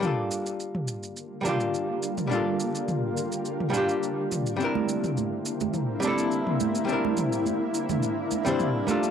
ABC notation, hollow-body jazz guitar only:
X:1
M:4/4
L:1/16
Q:1/4=105
K:Gdor
V:1 name="Hollow-body jazz guitar"
[G,B,DFA]8- [G,B,DFA]2 [G,B,DFG]6 | [G,B,DFA]8- [G,B,DFA]2 [G,B,DFG]6 | [G,CDEB]8- [G,CDEB]2 [G,CDEA]6 | [G,CDEB]8- [G,CDEB]2 z [G,CDEc]3 [G,B,DFA]2 |]